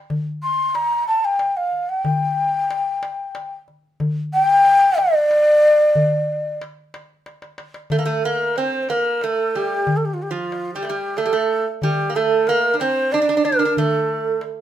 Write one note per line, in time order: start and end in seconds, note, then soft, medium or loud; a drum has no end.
0.10 darbuka dum medium
0.43 0.76 C6 loud
0.75 1.07 A#5 loud
0.75 darbuka tek medium
1.08 1.26 A5 medium
1.25 1.58 G5 medium
1.39 darbuka tek medium
1.57 1.91 F5 medium
1.72 darbuka ka soft
1.89 2.00 F#5 medium
2.00 3.53 G5 medium
2.05 darbuka dum medium
2.71 darbuka tek medium
3.03 darbuka tek medium
3.35 darbuka tek medium
3.68 darbuka ka soft
4.00 darbuka dum medium
4.33 5.00 G5 loud
4.65 darbuka tek medium
4.98 6.58 D5 loud
4.98 darbuka tek medium
5.31 darbuka tek medium
5.63 darbuka ka soft
5.95 darbuka dum medium
6.62 darbuka tek medium
6.94 darbuka tek medium
7.26 darbuka tek medium
7.42 darbuka ka medium
7.58 darbuka tek medium
7.74 darbuka ka medium
7.90 7.98 A3 medium
7.90 8.26 A4 medium
7.90 darbuka dum medium
7.99 8.05 A#3 medium
8.05 8.23 A3 medium
8.24 8.57 A#3 medium
8.24 8.59 A#4 medium
8.56 8.89 C4 medium
8.56 8.83 C5 medium
8.56 darbuka tek medium
8.83 8.92 C5 medium
8.89 9.23 A#3 medium
8.89 9.25 A#4 medium
8.89 darbuka tek medium
9.21 9.56 A3 medium
9.21 9.58 A4 medium
9.21 darbuka tek medium
9.55 9.92 G3 soft
9.55 9.98 G4 medium
9.87 darbuka dum medium
9.97 10.07 A4 medium
10.05 10.15 G4 medium
10.14 10.24 F4 medium
10.22 10.33 G4 medium
10.31 10.75 F3 medium
10.31 10.74 F4 medium
10.52 darbuka tek medium
10.74 10.82 G3 medium
10.74 11.19 G4 medium
10.82 10.89 A3 soft
10.82 darbuka tek medium
10.89 11.19 G3 medium
11.17 11.24 A3 medium
11.17 11.66 A4 medium
11.17 darbuka tek medium
11.25 11.32 G3 medium
11.33 11.64 A3 medium
11.82 12.09 G3 medium
11.82 12.17 G4 medium
11.82 darbuka dum medium
12.09 12.16 A#3 medium
12.16 12.48 A3 medium
12.16 12.49 A4 medium
12.47 12.74 A#3 medium
12.47 12.79 A#4 medium
12.47 darbuka tek medium
12.74 12.80 D4 soft
12.80 13.14 C4 medium
12.80 13.13 C5 medium
12.80 darbuka tek medium
13.12 13.20 D4 medium
13.12 13.47 D5 medium
13.12 darbuka tek medium
13.22 13.28 D4 medium
13.29 13.36 D4 medium
13.37 13.43 D4 medium
13.45 13.51 D4 medium
13.45 13.79 A#4 loud
13.52 13.58 D4 medium
13.59 13.64 D4 medium
13.65 13.73 D4 medium
13.77 14.39 A3 medium
13.77 14.43 A4 medium
13.77 darbuka dum medium
14.41 darbuka tek medium